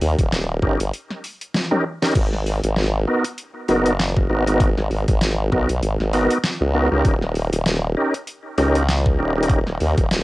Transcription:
0.01 D#2, open hi-hat
0.19 D#1, kick, closed hi-hat
0.32 snare, closed hi-hat
0.62 G1 C#4 D#4 G4 A#4, kick
0.80 G1, closed hi-hat
0.94 closed hi-hat
1.11 snare
1.24 open hi-hat
1.41 closed hi-hat
1.54 snare, closed hi-hat, high tom
1.71 C#4 D#4 G4 A#4, high tom
2.02 C#4 D#4 G4 A#4, snare, closed hi-hat
2.05 closed hi-hat
2.11 closed hi-hat
2.15 G#1, kick, closed hi-hat, crash
2.21 closed hi-hat
2.26 closed hi-hat
2.33 snare
2.46 open hi-hat
2.64 G#1, closed hi-hat
2.76 snare, closed hi-hat
3.07 B3 D#4 F#4 A#4
3.24 closed hi-hat
3.38 closed hi-hat
3.68 F#1 B3 D#4 F#4 A#4, open hi-hat
3.86 closed hi-hat
3.99 snare, closed hi-hat
4.16 kick
4.30 G#1 B3 D#4 F#4 A#4
4.47 B3 D#4 F#4 A#4, closed hi-hat
4.60 kick, closed hi-hat
4.78 G#1, snare
4.91 G#1, open hi-hat
5.08 G#1, kick, closed hi-hat
5.21 snare, closed hi-hat
5.52 B1 B3 D#4 F#4 A#4, kick
5.69 B1, closed hi-hat
5.83 G#1, closed hi-hat
6.00 G#1, snare
6.13 B3 D#4 F#4 A#4, open hi-hat
6.31 closed hi-hat
6.44 snare, closed hi-hat
6.61 C#2
6.74 B3 D#4 F#4 A#4
6.92 C#2 C#4 D#4 G4 A#4
7.05 D#1, kick, closed hi-hat
7.22 snare
7.35 open hi-hat
7.53 D#1, closed hi-hat
7.66 snare, closed hi-hat
7.97 C#4 D#4 G4 A#4
8.14 closed hi-hat
8.27 closed hi-hat
8.58 C#2 C#4 D#4 G4 A#4, open hi-hat
8.75 closed hi-hat
8.89 snare, closed hi-hat
9.06 kick
9.19 D#1 C#4 D#4 G4 A#4
9.36 C#4 D#4 G4 A#4
9.43 closed hi-hat
9.50 kick, closed hi-hat
9.67 D#1, snare
9.81 D#2, open hi-hat
9.98 D#1, kick, closed hi-hat
10.11 snare, closed hi-hat

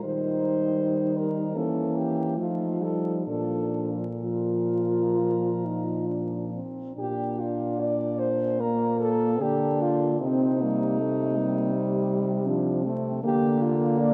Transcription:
0.02 D#3 G3 D#4 C5
1.17 A#4
1.55 E3 A#3 C#4 A4
1.97 G4
2.38 F3 A3 D#4 F4
2.81 G3 A4
3.27 A#2 F3 D4 A4
4.23 F3 F4 A#4
5.65 D#4
6.07 D4
6.53 C4
6.95 A#2 D4 G4
7.39 F4
7.81 D5
8.19 C5
8.59 A#3 A#4
9.00 A4
9.40 D3 A#3 D4 G4
9.82 F4
10.21 C3 C4 D#4
10.62 G3 A#3
10.98 A3
11.37 G3 A#3
11.73 C4
12.47 F3 D4
12.85 A3 C4
13.23 D3 A#3 G4
13.62 F4
13.98 A#3 D5

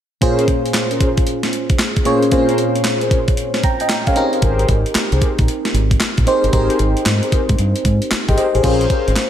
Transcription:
0.21 A#2 C#4 F4 G#4 A#4 C5, kick, closed hi-hat
0.39 closed hi-hat
0.48 kick, closed hi-hat
0.66 closed hi-hat
0.74 snare, clap, closed hi-hat
0.91 C#4 G#4 A#4 C5, closed hi-hat
1.00 kick, closed hi-hat
1.17 kick, closed hi-hat
1.27 closed hi-hat
1.43 snare, closed hi-hat
1.53 closed hi-hat
1.70 kick, closed hi-hat
1.79 snare, clap, closed hi-hat
1.96 kick, closed hi-hat
2.05 A#2 C#4 F4 G#4 A#4 C5 C#5, closed hi-hat
2.23 closed hi-hat
2.31 A#2 C4 C#4 F4 G#4 A#4 C5, kick, closed hi-hat
2.38 C#4
2.49 closed hi-hat
2.58 closed hi-hat
2.76 closed hi-hat
2.85 snare, clap, closed hi-hat
3.01 C#4 G#4 A#4 C5, closed hi-hat
3.11 kick, closed hi-hat
3.28 kick, closed hi-hat
3.37 closed hi-hat
3.54 snare, closed hi-hat
3.63 G5 A#5, kick, closed hi-hat
3.80 D#5 G5, closed hi-hat
3.89 snare, clap, closed hi-hat
4.07 C#4 G#4 A#4 C5 C#5 F5, kick, closed hi-hat
4.16 C4 D#4 G4 A#4, closed hi-hat
4.33 G4 G#4 A#4 C5, closed hi-hat
4.42 G#1 G4 G#4 A#4 C5, kick, closed hi-hat
4.59 closed hi-hat
4.68 G#1, kick, closed hi-hat
4.86 closed hi-hat
4.95 muted fingered electric bass stroke, snare, clap, closed hi-hat
5.12 C2 G4 G#4 A#4 C5, closed hi-hat
5.22 kick, closed hi-hat
5.39 A#1, kick, closed hi-hat
5.48 closed hi-hat
5.65 snare, closed hi-hat
5.74 G#1, closed hi-hat
5.91 kick, closed hi-hat
6.00 snare, clap, closed hi-hat
6.18 A#1, kick, closed hi-hat
6.27 C4 D#4 G4 G#4 A#4 C5, closed hi-hat
6.44 G1, closed hi-hat
6.53 G#1 C4 D#4 G4 G#4 A#4 C5, kick, closed hi-hat
6.70 closed hi-hat
6.79 G#1, closed hi-hat
6.97 closed hi-hat
7.06 G#2, snare, clap, closed hi-hat
7.23 G4 G#4 A#4 C5, closed hi-hat
7.32 muted fingered electric bass stroke, kick, closed hi-hat
7.49 G#2, kick, closed hi-hat
7.58 G2, closed hi-hat
7.76 closed hi-hat
7.85 G#2, kick, closed hi-hat
8.02 closed hi-hat
8.11 muted fingered electric bass stroke, snare, clap, closed hi-hat
8.28 G#1 G4 G#4 A#4 C5 D#5 G5, kick, closed hi-hat
8.38 C5 D#5, closed hi-hat
8.54 A1 G4 G#4 A#4 C5, closed hi-hat
8.63 A#1 C#4 F4 G#4 A#4 C5, kick, closed hi-hat, crash
8.81 closed hi-hat
8.90 C#4 G#4 A#4 C5, kick, closed hi-hat
9.08 G#1, closed hi-hat
9.16 snare, clap, closed hi-hat

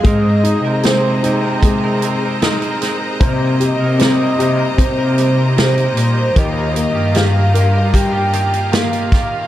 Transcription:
Already playing: G#4 C5
0.03 G#2 G#3 C4 D#4 A#4 D#5 A#5, kick, closed hi-hat
0.43 D#4, closed hi-hat
0.64 C3 C4 D#4 A#4
0.83 G#3 C4 D#4 A#4 C5, snare, closed hi-hat
1.23 G#3 C4 D#4, closed hi-hat
1.27 A#4
1.44 C4 D#4 A#4
1.63 G#3, kick, closed hi-hat
1.84 C4 D#4 A#4
2.02 G#3 C4 D#4 A#4, closed hi-hat
2.23 C4 D#4 A#4
2.42 G#3 C4 D#4 A#4, snare, closed hi-hat
2.62 C4 D#4 A#4, closed hi-hat
2.81 G#3 C4 D#4 A#4, snare, closed hi-hat
3.20 C3 G3 A#3 C4 D#4 G4 A#4, kick, closed hi-hat
3.60 G4, closed hi-hat
3.64 D#5
3.80 C3 A#3 D#4 A#4
3.99 C3 G3 A#3 C4 D#4 A#4, snare, closed hi-hat
4.04 D#5
4.38 C3 G3 A#3 D#4 G4 A#4, closed hi-hat
4.78 C3 C4 C5, kick, closed hi-hat
4.98 A#3 D#4 A#4
5.18 G3 A#3 D#4 A#4, closed hi-hat
5.38 A#3 D#4 A#4
5.57 C3 G3 A#3 D#4 G4 A#4 C5, snare, closed hi-hat
5.76 A#3 D#4 A#4, closed hi-hat
5.96 A#2 G3 A#3 D#4 A#4, closed hi-hat
6.35 D#2 D#3 A#3 F4 G4 D#5 F5, kick, closed hi-hat
6.75 A#3, closed hi-hat
6.95 G2 A#3 F4 G4
7.14 D#3 A#3 F4 G4 F5, snare, closed hi-hat
7.53 D#3 A#3 F4 G4 A#4, closed hi-hat
7.73 A#3 F4 G4
7.93 G4 G5, kick, closed hi-hat
8.13 A#3 F4 G4
8.33 D#3 A#3 F4 G4, closed hi-hat
8.52 A#3 F4 G4, closed hi-hat
8.72 D#3 A#3 F4 G4 F5, snare, closed hi-hat
8.91 A#3 F4 G4, closed hi-hat
9.12 D#3 A#3 F4 G4, kick, snare, closed hi-hat

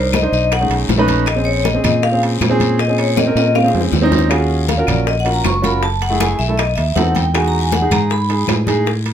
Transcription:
Already playing: C2 D4 D#4 A#4 C5
0.13 D#5, high bongo, high conga, high timbale, low timbale, short guiro, claves
0.22 D4 D#4 C5
0.32 B1 D#5, high bongo, high conga, short guiro
0.51 F#5, high bongo, high conga, high timbale, long guiro, claves
0.60 A3 C#4 D#4 G#4
0.69 B1, high bongo, high conga, high timbale
0.89 A#1, high bongo, low bongo, high conga, high timbale, low timbale, short guiro
0.98 A3 C#4 D#4 B4
1.08 high conga, high timbale, short guiro
1.26 D#5, high bongo, high conga, high timbale, long guiro, claves
1.36 C4 C#4 G#4
1.45 C#5, high bongo, high conga
1.64 D#5, high bongo, high conga, high timbale, low timbale, short guiro
1.74 C4 C#4 G#4
1.84 A#2 D#5, high bongo, high conga, low conga, high timbale, short guiro, claves
2.03 F5, high bongo, high conga, long guiro
2.12 C4 C#4 G#4
2.22 high bongo, high conga, high timbale
2.41 A#2, high bongo, low bongo, high conga, high timbale, low timbale, short guiro, claves
2.50 C4 C#4 G#4
2.60 high conga, high timbale, short guiro
2.79 D#5, high bongo, high conga, long guiro
2.88 C4 C#4 G#4
2.98 C#5, high bongo, high conga, high timbale
3.17 D#5, high bongo, high conga, high timbale, short guiro, claves
3.26 C4 C#4 A#4
3.35 A#2 D#5, high bongo, high conga, high timbale, short guiro
3.55 F5, high bongo, high conga, high timbale, long guiro, claves
3.63 C4 C#4 G#4
3.68 high bongo
3.74 F2, high conga, low timbale
3.81 low bongo
3.92 D#2, low bongo, high conga, low timbale, short guiro
4.02 C4 C#4 D#4
4.06 low bongo
4.12 high conga, low timbale, short guiro
4.19 low bongo
4.30 C#4 F4 F#4 G#4, high bongo, high conga, high timbale, long guiro, claves
4.50 high bongo, high conga
4.68 F5, high bongo, high conga, high timbale, low timbale, short guiro
4.77 C#4 F4 F#4 A#4
4.87 A#1 D5, high conga, low conga, high timbale, short guiro, claves
5.07 D#5, high bongo, high conga, long guiro
5.20 F#5
5.24 C#4 F4 F#4 A#4, high bongo, high conga, high timbale
5.34 A#5
5.44 F#1 C#6, high bongo, low bongo, high conga, high timbale, low timbale, short guiro, claves
5.62 C#4 F4 F#4 A#4 B5, high conga, high timbale, short guiro
5.82 A5, high bongo, high conga, long guiro
6.01 F#5, high bongo, high conga, high timbale
6.10 A3 E4 G#4
6.20 G#5, high bongo, high conga, high timbale, low timbale, short guiro, claves
6.39 B1 E5, high bongo, high conga, short guiro
6.48 A3 E4 A4
6.58 D#5, high bongo, high conga, high timbale, long guiro, claves
6.76 D#2 E5, high bongo, high conga, high timbale
6.96 E2 C4 D#4 A4 F#5, high bongo, low bongo, high conga, high timbale, low timbale, short guiro
7.15 G5, high conga, high timbale, short guiro
7.34 G#3 D#4 F#4 G#5, high bongo, high timbale, long guiro, claves
7.48 A#5
7.53 high bongo, high conga
7.61 G#5
7.72 F#5, high bongo, high conga, high timbale, low timbale, short guiro
7.81 G#3 D#4 G#4
7.91 G#2 A#5, high bongo, high conga, low conga, high timbale, short guiro, claves
8.10 B5, high bongo, high conga, long guiro
8.29 G#3 D#4 G#4, high bongo, high conga, high timbale
8.48 A2, high bongo, low bongo, high conga, high timbale, low timbale, short guiro, claves
8.66 G#3 D#4 G#4, high conga, high timbale, short guiro
8.86 high bongo, high conga, long guiro
9.05 high bongo, high conga, high timbale

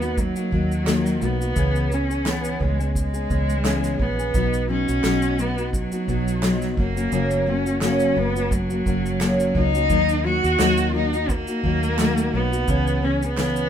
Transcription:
Already playing: D#2 B3
0.01 A#3 D#4 F#4, shaker
0.17 F#3, kick, shaker
0.36 A#3 D#4 F#4, shaker
0.51 D#2 F#3 A#3 D#4 F#4, kick
0.72 shaker
0.85 D#3 F#3 A#3 D#4 F#4, snare, clap, shaker
1.06 snare, shaker
1.20 B1 F#3 A#3 B3 D#4 F#4, shaker
1.40 A#3 D#4 F#4, shaker
1.56 C#2 C#3 E3 B3 C#4 G#4, kick, shaker
1.76 shaker
1.91 E3 B3 C#4 G#4, shaker
2.10 B3 C#4 G#4, shaker
2.25 C#3 E3 B3 C#4 G#4, snare, clap, shaker
2.44 shaker
2.60 C#2 E3 G#3 B3 C#4 G#4, kick
2.79 B3 C#4 G#4, shaker
2.95 G#3, kick, shaker
3.14 B3 C#4 G#4, shaker
3.29 C#2 E3 B3 C#4 G#4, kick, shaker
3.50 shaker
3.65 C#3 E3 B3 C#4 G#4, snare, clap, shaker
3.84 snare, shaker
3.99 A#1 E3 B3 C#4 G#4, kick
4.18 B3 C#4 G#4, shaker
4.34 B1 B2 F#3 B3 D#4 F#4, kick, shaker
4.53 shaker
4.68 F#3 B3 C#4 D#4 F#4
4.88 B1 B3 D#4 F#4, shaker
5.03 B1 B2 F#3 B3 D#4 F#4, snare, clap, shaker
5.22 shaker
5.38 F#3 B3 D#4 F#4, shaker
5.57 B3 D#4 F#4, shaker
5.73 F#3, kick, shaker
5.92 B3 D#4 F#4, shaker
6.08 B1 F#3 B3 D#4 F#4, kick, shaker
6.28 shaker
6.42 B2 F#3 B3 D#4 F#4, snare, clap, shaker
6.62 snare, shaker
6.77 F#1 F#3 A#3 C#4 F#4, kick
6.96 F#3 A#3 C#4 F#4, shaker
7.12 F#1 F#2 C#3 F#3 A#3 C#4 F#4, shaker
7.31 shaker
7.46 F#3 A#3 C#4 F#4
7.66 F#3 A#3 C#4 F#4, shaker
7.81 F#2 C#3 F#3 A#3 C#4 F#4, snare, clap, shaker
8.00 shaker
8.16 F#1 F#3 A#3 B3 C#4 F#4
8.35 F#3 A#3 C#4 F#4, shaker
8.51 F#3, kick, shaker
8.70 F#3 A#3 C#4 F#4, shaker
8.85 F#1 F#3 A#3 C#4 F#4, kick, shaker
9.06 shaker
9.20 F#2 C#3 F#3 A#3 C#4 F#4, snare, clap, shaker
9.40 shaker
9.55 C#2 F#3 A#3 C#4 D#4 F#4, kick
9.74 F#3 A#3 C#4 F#4, shaker
9.90 D#2 D#3 F#3 A#3 D#4 F#4, kick, shaker
10.09 shaker
10.24 F#3 A#3 D#4 F#4
10.43 D#2 A#3 D#4 F#4, shaker
10.59 D#2 D#3 F#3 A#3 D#4 F#4, snare, clap, shaker
10.78 shaker
10.94 F#3 A#3 D#4 F#4
11.13 A#3 D#4 F#4, shaker
11.29 A#3, kick, shaker
11.47 A#3 D#4 F#4, shaker
11.63 D#2 F#3 A#3 D#4 F#4, kick
11.83 shaker
11.98 D#3 F#3 A#3 D#4 F#4, snare, clap, shaker
12.18 shaker
12.33 B1 F#3 A#3 B3 D#4 F#4
12.52 A#3 D#4 F#4, shaker
12.68 C#2 C#3 E3 B3 C#4 G#4, kick, shaker
12.87 shaker
13.03 E3 B3 C#4 G#4
13.22 B3 C#4 G#4, shaker
13.37 C#3 E3 B3 C#4 G#4, snare, clap, shaker
13.56 shaker

